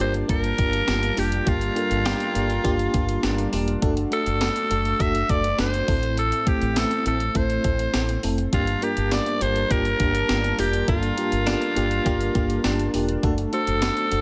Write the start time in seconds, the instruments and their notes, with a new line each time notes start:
Already playing: fm electric piano G2, analog synth pad G3 D4 F4 A#4 A5
0.00 fretless electric bass G1, fm electric piano A#3 D4 F4 G4, alto saxophone C5, closed hi-hat
0.14 closed hi-hat
0.28 fretless electric bass G1, fm electric piano A#3 D4 F4 A#4, alto saxophone A#4, kick, closed hi-hat
0.44 closed hi-hat
0.58 fretless electric bass G1, fm electric piano A#3 D4 F4 G4, kick, closed hi-hat
0.73 closed hi-hat
0.87 fretless electric bass G1, fm electric piano A#3 D4 F4 G4, snare, closed hi-hat, tambourine
1.03 closed hi-hat
1.17 fretless electric bass F1, fm electric piano A#3 D4 F4 G4, alto saxophone G4, open hi-hat
1.32 closed hi-hat
1.46 fretless electric bass G1, fm electric piano G2 A#3 D4 F4 G4, alto saxophone F4, kick, closed hi-hat
1.61 closed hi-hat
1.76 fm electric piano A#3 D4 F4 A4, closed hi-hat
1.91 fretless electric bass G1, closed hi-hat
2.05 clean electric guitar G4, fm electric piano G4, snare, closed hi-hat, tambourine
2.20 closed hi-hat
2.34 fretless electric bass G1, fm electric piano A#3 D4 F4 G4, closed hi-hat
2.50 closed hi-hat
2.64 fretless electric bass G1, fm electric piano A#3 D4 F4 G4, clean electric guitar F4, kick, closed hi-hat
2.79 closed hi-hat
2.94 fretless electric bass G1, fm electric piano A#3 D4 F4 G4, kick, closed hi-hat
3.09 closed hi-hat
3.23 fretless electric bass G1, fm electric piano A#3 D4 F4 G4, clean electric guitar D4, snare, closed hi-hat, tambourine
3.38 closed hi-hat
3.52 fretless electric bass E1, fm electric piano A#3 D4 F4 G4, clean electric guitar D4, open hi-hat
3.68 closed hi-hat
3.82 fretless electric bass F#1, fm electric piano A3 D4 F#4 A4, analog synth pad A3 F#4, kick, closed hi-hat
3.97 closed hi-hat
4.11 fm electric piano A3 D4 F#4 A4, alto saxophone A4, closed hi-hat
4.26 fretless electric bass F#1, closed hi-hat
4.40 fm electric piano A3 D4 F#4 A4, snare, closed hi-hat, tambourine
4.56 closed hi-hat
4.70 fretless electric bass F#1, fm electric piano A3 D4 F#4 A4, closed hi-hat
4.85 closed hi-hat
4.99 fretless electric bass F#1, fm electric piano A3 D4 F#4 A4, alto saxophone E5, kick, closed hi-hat
5.15 closed hi-hat
5.29 fretless electric bass F#1, fm electric piano A3 D4 F#4 A4, alto saxophone D5, kick, closed hi-hat
5.44 closed hi-hat
5.58 fretless electric bass F#1, fm electric piano A3 D4 F#4 A4, alto saxophone C5, snare, closed hi-hat, tambourine
5.74 closed hi-hat
5.88 fretless electric bass A1, fm electric piano A2 A3 C4 E4 A4, analog synth pad A3 C4 E4, kick, open hi-hat
6.03 closed hi-hat
6.17 alto saxophone A4, closed hi-hat
6.32 closed hi-hat
6.46 fm electric piano A3 C4 E4 A4, alto saxophone G4, kick, closed hi-hat
6.62 fretless electric bass A1, closed hi-hat
6.76 fm electric piano A3 C4 E4 A4, alto saxophone A4, snare, closed hi-hat, tambourine
6.91 closed hi-hat
7.05 fretless electric bass A1, fm electric piano A3 C4 E4 A4, alto saxophone A4, closed hi-hat
7.20 closed hi-hat
7.35 fretless electric bass A1, fm electric piano A3 C4 E4 A4, alto saxophone C5, kick, closed hi-hat
7.50 closed hi-hat
7.64 fretless electric bass A1, fm electric piano A3 C4 E4 A4, kick, closed hi-hat
7.79 closed hi-hat
7.93 fretless electric bass A1, fm electric piano A3 C4 E4 A4, snare, closed hi-hat, tambourine
8.09 closed hi-hat
8.23 fretless electric bass F1, fm electric piano A3 C4 E4 A4, open hi-hat
8.38 closed hi-hat
8.52 fretless electric bass G1, fm electric piano G2 A#3 D4 F4 G4, analog synth pad G3 D4 F4 A#4 A5, alto saxophone F4, kick, closed hi-hat
8.67 closed hi-hat
8.82 fm electric piano A#3 D4 F4 A#4, alto saxophone G4, closed hi-hat
8.97 fretless electric bass G1, closed hi-hat
9.11 fm electric piano A#3 D4 F4 G4, alto saxophone D5, snare, closed hi-hat, tambourine
9.26 closed hi-hat
9.41 fretless electric bass G1, fm electric piano A#3 D4 F4 G4, alto saxophone C5, closed hi-hat
9.56 closed hi-hat
9.70 fretless electric bass G1, fm electric piano A#3 D4 F4 G4, alto saxophone A#4, kick, closed hi-hat
9.85 closed hi-hat
9.99 fretless electric bass G1, fm electric piano A#3 D4 F4 G4, kick, closed hi-hat
10.15 closed hi-hat
10.29 fretless electric bass G1, fm electric piano A#3 D4 F4 G4, snare, closed hi-hat, tambourine
10.44 closed hi-hat
10.58 fretless electric bass F1, fm electric piano A#3 D4 F4 G4, alto saxophone G4, open hi-hat
10.73 closed hi-hat
10.88 fretless electric bass G1, fm electric piano G2 A#3 D4 F4 A4, alto saxophone F4, kick, closed hi-hat
11.03 closed hi-hat
11.17 fm electric piano A#3 D4 F4 G4, closed hi-hat
11.32 fretless electric bass G1, closed hi-hat
11.46 fm electric piano A#3 D4 F4 G4, clean electric guitar D4, snare, closed hi-hat, tambourine
11.62 closed hi-hat
11.76 fretless electric bass G1, fm electric piano A#3 D4 F4 G4, closed hi-hat
11.91 closed hi-hat
12.05 fretless electric bass G1, fm electric piano A#3 D4 F4 G4, clean electric guitar A#3, kick, closed hi-hat
12.21 closed hi-hat
12.34 fretless electric bass G1, fm electric piano A#3 D4 F4 G4, kick, closed hi-hat
12.50 closed hi-hat
12.64 fretless electric bass G1, fm electric piano A#3 D4 F4 G4, clean electric guitar D4, snare, closed hi-hat, tambourine
12.79 closed hi-hat
12.93 fretless electric bass E1, fm electric piano A#3 D4 F4 G4, open hi-hat
13.09 closed hi-hat
13.23 fretless electric bass F#1, fm electric piano A3 D4 F#4 A4, analog synth pad A3 F#4, kick, closed hi-hat
13.38 closed hi-hat
13.52 fm electric piano A3 D4 F#4 C5, alto saxophone A4, closed hi-hat
13.67 fretless electric bass F#1, closed hi-hat
13.82 fm electric piano A3 D4 F#4 A4, snare, closed hi-hat, tambourine
13.97 closed hi-hat
14.11 fretless electric bass F#1, fm electric piano A3 D4 F#4 A4, closed hi-hat